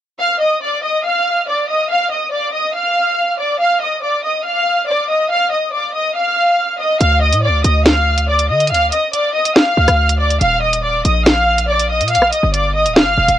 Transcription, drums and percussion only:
7.01 closed hi-hat
7.33 closed hi-hat
7.64 closed hi-hat
7.86 snare, closed hi-hat
8.18 closed hi-hat
8.39 closed hi-hat
8.60 closed hi-hat
8.67 closed hi-hat
8.74 closed hi-hat
8.92 closed hi-hat
9.13 closed hi-hat
9.45 closed hi-hat
9.56 snare
9.88 cross-stick, closed hi-hat
10.09 closed hi-hat
10.30 closed hi-hat
10.41 closed hi-hat
10.73 closed hi-hat
11.05 closed hi-hat
11.26 snare, closed hi-hat
11.58 closed hi-hat
11.79 closed hi-hat
12.01 closed hi-hat
12.08 closed hi-hat
12.15 closed hi-hat
12.22 cross-stick
12.33 closed hi-hat
12.54 closed hi-hat
12.86 closed hi-hat
12.96 snare
13.28 closed hi-hat

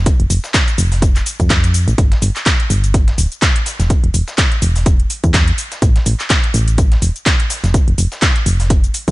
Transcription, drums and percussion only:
0.06 kick, closed hi-hat, shaker
0.20 closed hi-hat
0.30 closed hi-hat, open hi-hat, shaker
0.44 snare, shaker
0.54 kick, snare, clap, closed hi-hat, shaker
0.68 closed hi-hat, shaker
0.78 closed hi-hat, open hi-hat, shaker
0.92 snare, open hi-hat, shaker
1.02 kick, closed hi-hat, shaker
1.16 clap, closed hi-hat, shaker
1.26 closed hi-hat, open hi-hat, shaker
1.40 kick, closed hi-hat, shaker
1.50 kick, snare, clap, closed hi-hat, shaker
1.64 closed hi-hat, shaker
1.74 open hi-hat, shaker
1.88 closed hi-hat, shaker
1.98 kick, closed hi-hat, shaker
2.12 snare, closed hi-hat
2.22 closed hi-hat, open hi-hat, shaker
2.36 clap, closed hi-hat, shaker
2.46 kick, snare, clap, closed hi-hat, shaker
2.60 closed hi-hat
2.70 closed hi-hat, open hi-hat, shaker
2.84 closed hi-hat, shaker
2.94 kick, closed hi-hat, shaker
3.08 snare, closed hi-hat
3.18 closed hi-hat, open hi-hat, shaker
3.32 closed hi-hat, shaker
3.42 kick, snare, clap, closed hi-hat, shaker
3.56 closed hi-hat
3.66 snare, closed hi-hat, open hi-hat, shaker
3.80 snare, closed hi-hat, shaker
3.90 kick, closed hi-hat, shaker
4.04 closed hi-hat
4.14 closed hi-hat, open hi-hat, shaker
4.28 snare, shaker
4.38 kick, snare, clap, closed hi-hat, shaker
4.52 closed hi-hat
4.62 closed hi-hat, open hi-hat, shaker
4.76 snare, open hi-hat, shaker
4.86 kick, closed hi-hat, shaker
5.00 closed hi-hat
5.10 closed hi-hat, open hi-hat, shaker
5.24 kick, closed hi-hat, shaker
5.34 kick, snare, clap, closed hi-hat, shaker
5.48 closed hi-hat
5.58 closed hi-hat, open hi-hat, shaker
5.72 snare, closed hi-hat, shaker
5.82 kick, closed hi-hat, shaker
5.96 snare, closed hi-hat
6.06 closed hi-hat, open hi-hat, shaker
6.20 clap, closed hi-hat, shaker
6.30 kick, snare, clap, closed hi-hat, shaker
6.44 closed hi-hat
6.54 closed hi-hat, open hi-hat, shaker
6.68 closed hi-hat, shaker
6.78 kick, closed hi-hat, shaker
6.92 snare, closed hi-hat
7.02 closed hi-hat, open hi-hat, shaker
7.16 closed hi-hat, shaker
7.26 kick, snare, clap, closed hi-hat, shaker
7.40 closed hi-hat
7.50 snare, closed hi-hat, open hi-hat, shaker
7.64 snare, closed hi-hat, shaker
7.74 kick, closed hi-hat, shaker
7.88 closed hi-hat
7.98 closed hi-hat, open hi-hat, shaker
8.12 snare, shaker
8.22 kick, snare, clap, closed hi-hat, shaker
8.36 closed hi-hat
8.46 closed hi-hat, open hi-hat, shaker
8.60 snare, open hi-hat, shaker
8.70 kick, closed hi-hat, shaker
8.84 closed hi-hat, shaker
8.94 closed hi-hat, open hi-hat, shaker
9.08 kick, closed hi-hat, shaker

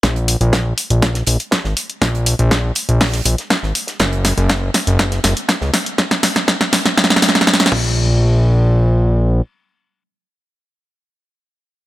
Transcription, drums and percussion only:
0.03 kick, snare, closed hi-hat
0.16 closed hi-hat
0.28 closed hi-hat, open hi-hat
0.41 closed hi-hat
0.53 kick, snare, closed hi-hat
0.78 closed hi-hat, open hi-hat
0.90 closed hi-hat
1.02 kick, snare, closed hi-hat
1.15 snare, closed hi-hat
1.27 closed hi-hat, open hi-hat
1.40 closed hi-hat
1.51 kick, snare, closed hi-hat
1.64 snare
1.77 closed hi-hat, open hi-hat
1.90 closed hi-hat
2.02 kick, snare, closed hi-hat
2.15 closed hi-hat
2.26 closed hi-hat, open hi-hat
2.39 closed hi-hat
2.51 kick, snare, closed hi-hat
2.75 closed hi-hat, open hi-hat
2.89 closed hi-hat
3.01 kick, snare, closed hi-hat, open hi-hat
3.13 snare, closed hi-hat
3.25 closed hi-hat, open hi-hat
3.38 snare, closed hi-hat
3.50 kick, snare, closed hi-hat
3.63 snare
3.75 closed hi-hat, open hi-hat
3.87 snare, closed hi-hat
4.00 kick, snare, closed hi-hat
4.13 closed hi-hat
4.25 snare, closed hi-hat, open hi-hat
4.38 closed hi-hat
4.49 kick, snare, closed hi-hat
4.74 snare, closed hi-hat, open hi-hat
4.87 closed hi-hat
4.99 kick, snare, closed hi-hat
5.12 snare, closed hi-hat
5.24 snare, closed hi-hat, open hi-hat
5.37 closed hi-hat
5.48 kick, snare, closed hi-hat
5.61 snare
5.74 snare, closed hi-hat, open hi-hat
5.86 closed hi-hat
5.98 kick, snare, closed hi-hat
6.11 snare, closed hi-hat
6.23 snare, open hi-hat
6.36 snare, closed hi-hat
6.48 kick, snare, closed hi-hat
6.61 snare
6.73 snare, open hi-hat
6.86 snare, closed hi-hat
6.97 kick, snare, closed hi-hat
7.04 snare
7.10 snare, closed hi-hat
7.16 snare
7.22 snare, open hi-hat
7.29 snare
7.35 snare, closed hi-hat
7.41 snare
7.47 kick, snare, closed hi-hat
7.54 snare
7.60 snare
7.66 snare
7.72 kick, crash

